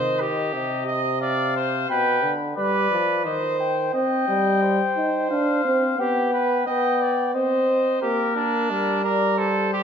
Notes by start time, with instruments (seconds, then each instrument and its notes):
Already playing: euphonium D#3, trumpet C5 D#5
0.20 trumpet G4
0.53 euphonium C3, trumpet D#5
0.87 trumpet D#5
1.21 trumpet D5 F5
1.56 trumpet C5
1.89 euphonium B2, trumpet B4 G5
2.23 euphonium D3
2.56 euphonium G3, trumpet B4 D5
2.90 euphonium F3
3.25 euphonium D#3, trumpet C5 D#5
3.60 trumpet G5
3.93 euphonium C4, trumpet D#5 G5
4.28 euphonium G3
4.62 trumpet C5
4.97 euphonium D#4
5.31 euphonium D4, trumpet F5
5.65 euphonium C4
5.99 euphonium B3, trumpet G4 G5
6.33 trumpet B4
6.66 euphonium B3, trumpet D#5 G5
7.01 trumpet D5
7.34 euphonium C4, trumpet C5 D#5
8.02 euphonium A#3, trumpet G4 A#4
8.36 trumpet D4
8.70 euphonium G3, trumpet A#4
9.04 trumpet A#4 D5
9.38 trumpet A4 C5
9.73 trumpet G4